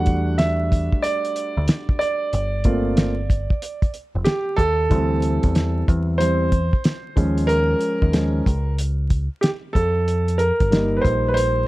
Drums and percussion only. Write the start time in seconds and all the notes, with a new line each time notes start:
0.06 kick, closed hi-hat
0.39 snare, closed hi-hat
0.72 kick, closed hi-hat
0.92 kick
1.04 closed hi-hat
1.25 closed hi-hat
1.36 closed hi-hat
1.68 snare, closed hi-hat
1.89 kick
2.01 closed hi-hat
2.33 closed hi-hat
2.64 kick, closed hi-hat
2.97 snare, closed hi-hat
3.30 kick, closed hi-hat
3.50 kick
3.62 closed hi-hat
3.82 kick, closed hi-hat
3.94 closed hi-hat
4.25 snare, closed hi-hat
4.58 kick, closed hi-hat
4.91 kick, closed hi-hat
5.22 closed hi-hat
5.43 kick, closed hi-hat
5.55 snare, closed hi-hat
5.88 kick, closed hi-hat
6.21 closed hi-hat
6.52 kick, closed hi-hat
6.73 kick
6.84 snare, closed hi-hat
7.17 kick, closed hi-hat
7.38 closed hi-hat
7.49 closed hi-hat
7.80 closed hi-hat
8.02 kick
8.13 snare, closed hi-hat
8.46 kick, closed hi-hat
8.79 closed hi-hat
9.10 kick, closed hi-hat
9.43 snare, closed hi-hat
9.75 kick, closed hi-hat
10.08 closed hi-hat
10.28 closed hi-hat
10.39 closed hi-hat
10.60 kick, closed hi-hat
10.72 snare, closed hi-hat
11.05 kick, closed hi-hat
11.37 closed hi-hat